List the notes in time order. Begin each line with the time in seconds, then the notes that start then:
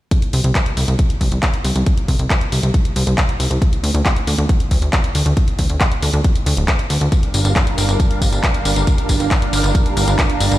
0.11 kick, closed hi-hat
0.22 closed hi-hat
0.33 C2, open hi-hat
0.44 C2, closed hi-hat
0.55 kick, clap, closed hi-hat
0.66 closed hi-hat
0.77 C2, open hi-hat
0.88 C2, closed hi-hat
0.99 kick, closed hi-hat
1.10 closed hi-hat
1.21 C2, kick, open hi-hat
1.32 C2, closed hi-hat
1.43 kick, clap, closed hi-hat
1.54 closed hi-hat
1.65 C2, open hi-hat
1.76 C2, closed hi-hat
1.86 kick, closed hi-hat
1.97 closed hi-hat
2.08 C2, kick, open hi-hat
2.19 C2, closed hi-hat
2.30 kick, clap, closed hi-hat
2.41 closed hi-hat
2.52 C2, open hi-hat
2.63 C2, closed hi-hat
2.74 kick, closed hi-hat
2.85 closed hi-hat
2.96 C2, open hi-hat
3.07 C2, closed hi-hat
3.18 kick, clap, closed hi-hat
3.29 closed hi-hat
3.40 C2, open hi-hat
3.51 C2, closed hi-hat
3.62 kick, closed hi-hat
3.73 closed hi-hat
3.83 D2, open hi-hat
3.94 D2, closed hi-hat
4.05 kick, clap, closed hi-hat
4.16 closed hi-hat
4.27 D2, open hi-hat
4.38 D2, closed hi-hat
4.49 kick, closed hi-hat
4.60 closed hi-hat
4.71 D2, kick, open hi-hat
4.82 D2, closed hi-hat
4.93 kick, clap, closed hi-hat
5.04 closed hi-hat
5.15 D2, open hi-hat
5.26 D2, closed hi-hat
5.37 kick, closed hi-hat
5.48 closed hi-hat
5.59 D2, kick, open hi-hat
5.70 D2, closed hi-hat
5.81 kick, clap, closed hi-hat
5.92 closed hi-hat
6.02 D2, open hi-hat
6.13 D2, closed hi-hat
6.24 kick, closed hi-hat
6.35 closed hi-hat
6.46 D2, open hi-hat
6.57 D1, closed hi-hat
6.68 kick, clap, closed hi-hat
6.79 closed hi-hat
6.90 D2, open hi-hat
7.01 D2, closed hi-hat
7.12 kick, closed hi-hat, tambourine
7.23 closed hi-hat
7.34 G1, open hi-hat, tambourine
7.45 G1, closed hi-hat, tambourine
7.56 kick, clap, closed hi-hat, tambourine
7.67 closed hi-hat
7.78 G1, open hi-hat, tambourine
7.89 G1, closed hi-hat, tambourine
8.00 kick, closed hi-hat, tambourine
8.11 closed hi-hat
8.21 G1, kick, open hi-hat, tambourine
8.32 G1, closed hi-hat, tambourine
8.43 kick, clap, closed hi-hat
8.54 closed hi-hat
8.65 G1, open hi-hat, tambourine
8.76 G1, closed hi-hat, tambourine
8.87 kick, closed hi-hat, tambourine
8.98 closed hi-hat
9.09 G1, kick, open hi-hat, tambourine
9.20 G1, closed hi-hat, tambourine
9.31 kick, clap, closed hi-hat, tambourine
9.42 closed hi-hat
9.53 G1, open hi-hat, tambourine
9.64 G1, closed hi-hat, tambourine
9.75 kick, closed hi-hat, tambourine
9.86 closed hi-hat
9.97 G1, open hi-hat, tambourine
10.08 G1, closed hi-hat, tambourine
10.19 kick, clap, closed hi-hat, tambourine
10.30 closed hi-hat
10.40 G1, open hi-hat, tambourine
10.51 G1, closed hi-hat, tambourine